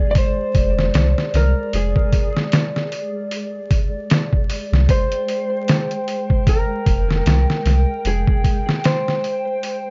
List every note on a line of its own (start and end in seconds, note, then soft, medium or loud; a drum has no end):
0.00 9.90 G#3 medium
0.00 0.15 G#4 medium
0.00 4.91 D5 medium
0.11 0.16 D5 medium
0.15 1.36 C5 loud
0.15 kick loud
0.15 open hi-hat medium
0.55 0.90 F1 medium
0.55 kick medium
0.55 open hi-hat medium
0.79 snare soft
0.94 1.14 C2 loud
0.94 snare loud
0.94 open hi-hat medium
1.18 snare soft
1.34 1.54 C2 medium
1.34 1.75 A#4 medium
1.34 snare soft
1.34 open hi-hat medium
1.73 1.93 F1 loud
1.73 2.49 G#4 medium
1.73 open hi-hat medium
1.96 kick medium
2.12 kick loud
2.12 open hi-hat medium
2.37 snare medium
2.52 snare loud
2.52 open hi-hat medium
2.76 snare soft
2.92 open hi-hat medium
3.31 open hi-hat medium
3.71 kick medium
3.71 open hi-hat medium
4.10 snare loud
4.10 open hi-hat medium
4.33 kick loud
4.50 open hi-hat medium
4.72 4.87 C2 loud
4.72 snare soft
4.89 6.52 C5 loud
4.89 9.90 G5 medium
4.89 kick loud
4.89 open hi-hat medium
5.12 closed hi-hat soft
5.28 open hi-hat medium
5.68 snare loud
5.68 open hi-hat medium
5.91 closed hi-hat soft
6.08 open hi-hat medium
6.30 kick medium
6.47 8.11 A#4 loud
6.47 kick loud
6.47 open hi-hat medium
6.86 7.22 F1 loud
6.86 kick loud
6.86 open hi-hat medium
7.11 snare soft
7.26 7.46 C2 loud
7.26 snare loud
7.26 open hi-hat medium
7.50 snare medium
7.65 7.85 C2 medium
7.65 snare soft
7.65 open hi-hat medium
8.05 8.25 F1 loud
8.05 8.87 G#4 medium
8.05 open hi-hat medium
8.27 kick medium
8.44 kick medium
8.44 open hi-hat medium
8.69 snare medium
8.84 9.90 C5 loud
8.84 snare loud
8.84 open hi-hat medium
9.08 snare soft
9.24 open hi-hat medium
9.63 open hi-hat medium